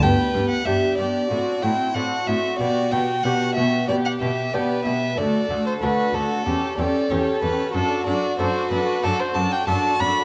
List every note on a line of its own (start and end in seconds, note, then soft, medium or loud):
0.01 0.09 G2 soft
0.01 0.31 G2 soft
0.01 0.33 B3 soft
0.01 0.33 G4 soft
0.01 0.62 B4 soft
0.01 0.49 G5 medium
0.33 0.41 G2 soft
0.33 0.63 G2 soft
0.33 0.64 B3 soft
0.33 0.65 G4 soft
0.50 0.67 F#5 medium
0.65 0.74 G2 soft
0.65 0.95 G2 soft
0.65 0.97 B3 soft
0.65 1.27 D4 soft
0.65 0.98 G4 soft
0.65 1.30 G4 soft
0.65 1.27 G4 soft
0.65 0.98 E5 medium
0.98 1.06 G2 soft
0.98 1.27 G2 soft
0.98 1.30 B3 soft
0.98 1.30 G4 soft
0.98 1.64 D5 medium
1.30 1.39 A2 soft
1.30 1.60 A2 soft
1.30 1.61 C4 soft
1.30 1.61 F#4 soft
1.30 1.62 F#4 soft
1.62 1.71 A2 soft
1.62 1.92 A2 soft
1.62 1.93 C4 soft
1.62 1.95 E4 soft
1.62 1.94 F#4 soft
1.62 1.96 G5 medium
1.94 2.03 A2 soft
1.94 2.24 A2 soft
1.94 2.26 C4 soft
1.94 2.56 D4 soft
1.94 3.89 F#4 soft
1.94 2.27 F#4 soft
1.94 2.56 F#4 soft
1.94 2.28 F#5 soft
2.27 2.35 A2 soft
2.27 2.57 A2 soft
2.27 2.59 C4 soft
2.27 2.60 F#4 soft
2.27 2.58 E5 medium
2.59 2.68 B2 soft
2.59 2.89 B2 soft
2.59 2.90 B3 soft
2.59 2.91 G4 soft
2.59 2.93 D5 medium
2.91 3.00 B2 soft
2.91 3.21 B2 soft
2.91 3.23 B3 soft
2.91 3.24 G4 soft
2.91 3.25 G5 medium
3.23 3.32 B2 soft
3.23 3.54 B2 soft
3.23 3.55 B3 soft
3.23 3.85 B3 soft
3.23 3.85 D4 soft
3.23 3.55 G4 soft
3.23 3.85 G4 soft
3.23 3.55 F#5 medium
3.56 3.64 B2 soft
3.56 3.86 B2 soft
3.56 3.88 B3 soft
3.56 3.88 G4 soft
3.56 3.88 E5 medium
3.88 3.97 B2 soft
3.88 4.18 B2 soft
3.88 4.20 B3 soft
3.88 4.19 G4 soft
3.88 4.54 G4 soft
3.88 3.95 D5 medium
4.05 4.12 F#5 soft
4.20 4.29 B2 soft
4.20 4.50 B2 soft
4.20 4.52 B3 soft
4.20 4.52 G4 soft
4.20 4.55 E5 soft
4.53 4.61 B2 soft
4.53 4.82 B2 soft
4.53 4.84 B3 soft
4.53 5.14 B3 soft
4.53 5.14 D4 soft
4.53 4.84 G4 soft
4.53 5.14 G4 soft
4.53 5.17 B4 soft
4.53 4.85 D5 medium
4.85 4.93 B2 soft
4.85 5.15 B2 soft
4.85 5.17 B3 soft
4.85 5.17 G4 soft
4.85 5.19 E5 medium
5.17 5.25 D2 medium
5.17 5.47 D2 soft
5.17 5.48 A3 medium
5.17 5.49 F#4 soft
5.17 5.82 A4 soft
5.17 5.66 D5 medium
5.49 5.58 D2 soft
5.49 5.79 D2 soft
5.49 5.80 A3 soft
5.49 5.81 F#4 soft
5.67 5.73 C5 soft
5.81 5.90 D2 soft
5.81 6.11 D2 soft
5.81 6.13 A3 soft
5.81 6.43 D4 soft
5.81 6.47 F#4 soft
5.81 6.13 F#4 soft
5.81 6.43 F#4 soft
5.81 6.16 B4 medium
6.14 6.22 D2 soft
6.14 6.43 D2 soft
6.14 6.46 A3 soft
6.14 6.46 F#4 soft
6.14 6.78 A4 medium
6.46 6.75 E2 soft
6.46 6.54 E2 soft
6.46 6.77 C#4 soft
6.46 6.77 G4 soft
6.46 6.78 G4 soft
6.78 6.86 E2 soft
6.78 7.07 E2 soft
6.78 7.09 C#4 soft
6.78 7.09 G4 soft
6.78 7.75 A4 soft
6.78 7.12 D5 medium
7.10 7.18 E2 soft
7.10 7.40 E2 soft
7.10 7.41 C#4 soft
7.10 7.71 C#4 soft
7.10 7.42 G4 soft
7.10 7.71 G4 soft
7.10 7.42 C#5 medium
7.42 7.50 E2 soft
7.42 7.72 E2 soft
7.42 7.74 C#4 soft
7.42 7.74 G4 soft
7.42 7.74 B4 medium
7.74 7.82 F#2 medium
7.74 8.04 F#2 soft
7.74 8.06 D4 medium
7.74 9.64 F#4 medium
7.74 8.06 A4 soft
7.74 8.06 A4 medium
8.07 8.15 F#2 soft
8.07 8.36 F#2 soft
8.07 8.38 D4 soft
8.07 8.38 A4 soft
8.07 8.38 D5 medium
8.39 8.47 F#2 soft
8.39 8.68 F#2 soft
8.39 8.99 A3 soft
8.39 8.70 D4 soft
8.39 9.00 D4 soft
8.39 8.71 A4 soft
8.39 9.00 A4 soft
8.39 8.71 C5 medium
8.71 9.00 F#2 soft
8.71 8.79 F#2 soft
8.71 9.02 D4 soft
8.71 9.03 A4 soft
8.71 9.05 B4 medium
9.03 9.32 F#2 soft
9.03 9.11 F#2 soft
9.03 9.66 A3 soft
9.03 9.34 D4 soft
9.03 9.21 A4 medium
9.03 9.35 A4 soft
9.20 9.36 C5 medium
9.34 9.64 F#2 soft
9.34 9.44 F#2 soft
9.34 9.66 D4 soft
9.34 9.67 A4 soft
9.34 9.53 A5 medium
9.52 9.68 G5 medium
9.67 9.96 F#2 soft
9.67 9.75 F#2 soft
9.67 10.24 A3 soft
9.67 9.98 D4 soft
9.67 10.24 D4 soft
9.67 10.24 F#4 soft
9.67 10.24 A4 soft
9.67 9.99 A4 soft
9.67 10.02 A5 medium
9.99 10.07 F#2 soft
9.99 10.24 F#2 soft
9.99 10.24 D4 soft
9.99 10.24 A4 soft
9.99 10.24 B5 medium